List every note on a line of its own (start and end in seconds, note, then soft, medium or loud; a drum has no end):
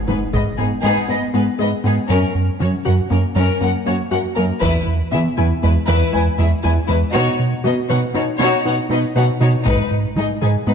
0.00 impact soft
0.08 0.17 G#2 soft
0.08 0.23 G#3 soft
0.08 0.17 B3 soft
0.08 0.23 D#4 soft
0.08 0.17 G#4 soft
0.08 0.16 B4 soft
0.33 0.48 G#2 soft
0.33 0.42 G#2 soft
0.33 0.42 B3 soft
0.33 0.49 G#4 soft
0.33 0.42 B4 soft
0.33 0.41 D#5 soft
0.33 taiko soft
0.58 0.74 G#2 soft
0.58 0.67 G#2 soft
0.58 0.74 B3 soft
0.58 0.68 B3 soft
0.58 0.67 D#4 soft
0.58 0.66 G#4 soft
0.83 0.99 G#2 medium
0.83 0.92 G#2 medium
0.83 0.98 G#3 medium
0.83 1.07 B3 medium
0.83 1.07 D#4 soft
0.83 1.07 G#4 medium
1.08 1.24 G#2 medium
1.08 1.17 G#2 soft
1.08 1.24 B3 medium
1.08 1.17 B3 soft
1.08 1.17 B4 soft
1.08 1.18 D#5 soft
1.34 1.49 G#2 soft
1.34 1.42 G#2 soft
1.34 1.49 B3 medium
1.34 1.43 B3 soft
1.34 1.43 G#4 soft
1.34 1.43 B4 soft
1.59 1.74 G#2 soft
1.59 1.67 G#2 soft
1.59 1.68 B3 soft
1.59 1.74 G#4 soft
1.59 1.68 B4 soft
1.59 1.69 D#5 soft
1.84 1.99 G#2 soft
1.84 1.93 G#2 soft
1.84 1.99 B3 medium
1.84 1.94 B3 soft
1.84 1.94 D#4 soft
1.84 1.94 G#4 soft
2.09 2.25 F#2 medium
2.09 2.18 F#2 medium
2.09 2.25 F#3 medium
2.09 2.33 C#4 medium
2.09 2.34 A#4 medium
2.35 2.50 F#2 medium
2.60 2.68 F#2 soft
2.60 2.75 F#3 soft
2.60 2.75 C#4 medium
2.60 2.69 C#4 soft
2.60 2.68 F#4 soft
2.60 2.69 C#5 soft
2.85 2.94 F#2 soft
2.85 3.01 F#2 soft
2.85 2.94 C#4 soft
2.85 3.00 F#4 medium
2.85 2.94 A#4 soft
2.85 2.94 F#5 soft
3.10 3.26 F#2 soft
3.10 3.19 F#2 soft
3.10 3.26 A#3 medium
3.10 3.19 C#4 soft
3.10 3.19 A#4 soft
3.36 3.51 F#2 medium
3.36 3.44 F#2 medium
3.36 3.51 F#3 medium
3.36 3.60 C#4 soft
3.36 3.59 A#4 medium
3.61 3.76 F#2 medium
3.61 3.69 F#2 soft
3.61 3.76 A#3 soft
3.61 3.69 C#4 soft
3.61 3.69 A#4 soft
3.61 3.70 F#5 soft
3.86 3.94 F#2 soft
3.86 4.02 F#2 medium
3.86 4.01 A#3 medium
3.86 3.94 C#4 soft
3.86 3.94 F#4 soft
3.86 3.94 C#5 soft
4.11 4.19 F#2 soft
4.11 4.27 F#2 soft
4.11 4.19 C#4 soft
4.11 4.26 F#4 soft
4.11 4.19 A#4 soft
4.11 4.19 F#5 soft
4.36 4.44 F#2 soft
4.36 4.52 F#2 medium
4.36 4.52 A#3 medium
4.36 4.45 C#4 soft
4.36 4.44 A#4 soft
4.60 4.70 E2 medium
4.60 4.77 E2 medium
4.60 4.77 E3 medium
4.60 4.85 E4 medium
4.60 4.85 B4 medium
4.60 taiko medium
4.87 5.02 E2 medium
5.11 5.20 E2 soft
5.11 5.28 E3 medium
5.11 5.27 B3 medium
5.11 5.21 E4 soft
5.11 5.21 G#4 soft
5.11 5.19 E5 soft
5.38 5.46 E2 soft
5.38 5.53 E2 medium
5.38 5.53 E4 medium
5.38 5.46 E4 soft
5.38 5.46 B4 soft
5.38 5.46 G#5 soft
5.62 5.71 E2 soft
5.62 5.78 E2 medium
5.62 5.78 G#3 medium
5.62 5.73 E4 soft
5.62 5.70 B4 soft
5.88 5.96 E2 medium
5.88 6.04 E2 medium
5.88 6.03 E3 medium
5.88 6.12 E4 medium
5.88 6.11 B4 medium
6.13 6.22 E2 soft
6.13 6.29 E2 medium
6.13 6.28 G#3 medium
6.13 6.23 E4 soft
6.13 6.22 B4 soft
6.13 6.21 G#5 soft
6.38 6.47 E2 soft
6.38 6.54 E2 soft
6.38 6.53 G#3 medium
6.38 6.47 E4 soft
6.38 6.47 G#4 soft
6.38 6.46 E5 soft
6.63 6.72 E2 soft
6.63 6.79 E2 medium
6.63 6.72 E4 soft
6.63 6.79 E4 medium
6.63 6.72 B4 soft
6.63 6.71 G#5 soft
6.88 6.97 E2 soft
6.88 7.04 E2 medium
6.88 7.04 G#3 medium
6.88 6.96 E4 soft
6.88 6.96 B4 soft
7.13 7.22 B2 medium
7.13 7.29 B2 medium
7.13 7.30 B3 medium
7.13 7.37 D#4 medium
7.13 7.37 F#4 medium
7.13 7.38 C#5 medium
7.39 7.55 B2 medium
7.64 7.72 B2 soft
7.64 7.79 B3 medium
7.64 7.73 D#4 soft
7.64 7.79 F#4 medium
7.64 7.73 B4 soft
7.64 7.73 D#5 soft
7.89 7.97 B2 soft
7.89 8.05 B2 soft
7.89 7.97 D#4 soft
7.89 8.05 B4 medium
7.89 7.97 C#5 soft
7.89 7.98 F#5 soft
8.14 8.22 B2 soft
8.14 8.30 B2 medium
8.14 8.23 D#4 soft
8.14 8.30 D#4 medium
8.14 8.23 F#4 soft
8.14 8.24 C#5 soft
8.39 8.47 B2 medium
8.39 8.55 B2 medium
8.39 8.55 B3 medium
8.39 8.64 D#4 medium
8.39 8.64 F#4 medium
8.39 8.63 C#5 medium
8.65 8.73 B2 soft
8.65 8.80 B2 medium
8.65 8.80 D#4 medium
8.65 8.74 D#4 soft
8.65 8.74 C#5 soft
8.65 8.75 F#5 soft
8.90 8.98 B2 soft
8.90 9.05 B2 medium
8.90 9.06 D#4 medium
8.90 9.00 D#4 soft
8.90 9.00 B4 medium
8.90 8.99 D#5 soft
9.15 9.31 B2 medium
9.15 9.24 B2 soft
9.15 9.25 D#4 soft
9.15 9.31 B4 medium
9.15 9.25 C#5 medium
9.15 9.24 F#5 soft
9.41 9.49 B2 soft
9.41 9.56 B2 medium
9.41 9.56 D#4 medium
9.41 9.49 D#4 medium
9.41 9.49 F#4 soft
9.41 9.49 C#5 soft
9.66 9.74 G#2 medium
9.66 9.81 G#2 medium
9.66 9.81 G#3 medium
9.66 9.90 D#4 medium
9.66 9.89 B4 medium
9.66 taiko medium
9.91 10.06 G#2 medium
10.16 10.25 G#2 soft
10.16 10.31 G#3 medium
10.16 10.32 D#4 medium
10.16 10.25 D#4 soft
10.16 10.26 G#4 soft
10.16 10.26 D#5 soft
10.42 10.57 G#2 soft
10.42 10.50 G#2 soft
10.42 10.51 D#4 soft
10.42 10.57 G#4 medium
10.42 10.51 B4 soft
10.42 10.50 G#5 soft
10.67 10.74 G#2 medium
10.67 10.74 G#2 soft
10.67 10.74 B3 medium
10.67 10.74 D#4 soft
10.67 10.74 B4 soft